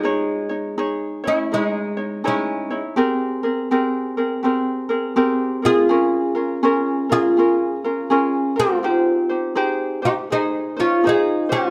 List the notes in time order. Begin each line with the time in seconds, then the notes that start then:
Already playing: G#3 D#4
0.03 D#4 G#4 C#5
0.49 D#4 C#5
0.78 D#4 G#4 C#5
1.24 C#4 E4 C#5
1.28 E4
1.52 G#3 D#4 E4 G#4 C#5
1.65 D#4
1.97 D#4 C#5
2.24 G#3 C#4 D#4 E4 G#4 C#5
2.70 D#4 E4 C#5
2.96 C4 G4 G#4 A#4
3.43 C4 G#4 A#4
3.71 C4 G4 G#4 A#4
4.17 C4 G#4 A#4
4.43 C4 G4 G#4 A#4
4.89 C4 G#4 A#4
5.16 C4 G4 G#4 A#4
5.62 C4 F4 G#4 A#4
5.89 C#4 F4 G#4 A#4
6.35 C#4 F4 A#4
6.63 C#4 F4 G#4 A#4
7.09 C#4 F4 G#4 A#4
7.37 C#4 F4 G#4 A#4
7.84 C#4 F4 A#4
8.10 C#4 F4 G#4 A#4
8.56 C4 F4 A#4
8.83 D#4 G4 G#4 C5
9.29 D#4 G4 C5
9.55 D#4 G4 G#4 C5
10.02 D#4 G4 C5
10.30 D#4 G#4 C5
10.77 C#4 D#4 F4 C5
11.04 D#4 G#4 C5
11.09 G#4
11.49 C#4 D#4 F4 G4 C5